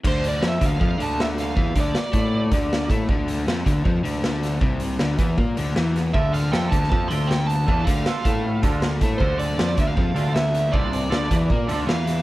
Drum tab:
CC |x---------------|----------------|----------------|----------------|
HH |--x---x---x---x-|--x---x---x---x-|--x---x---x---x-|--x---x---x---x-|
SD |----o-------o-o-|----o-------o---|----o-------o-o-|----o-------o-o-|
BD |o-----o-o-------|o-o---o---o---o-|o-----o-o-------|o-----o-o-------|

CC |----------------|----------------|----------------|----------------|
HH |--x---x---x---x-|--x---x---x---x-|--x---x---x---x-|--x---x---x---x-|
SD |----o--o----o---|----o-------o---|----o-------o-o-|----o-------o-o-|
BD |o-----o-o-------|o-o---o---o---o-|o-----o-o-------|o-----o-o-------|